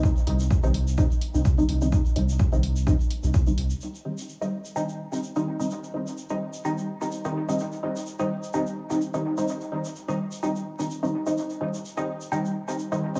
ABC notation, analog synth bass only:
X:1
M:4/4
L:1/16
Q:"Swing 16ths" 1/4=127
K:Cm
V:1 name="Analog synth bass" clef=bass
z2 C,,2 z C,,3 B,,, z2 C,,2 z C,,2 | z2 C,,2 z C,,3 B,,, z2 C,,2 z C,, z | z16 | z16 |
z16 | z16 | z16 |]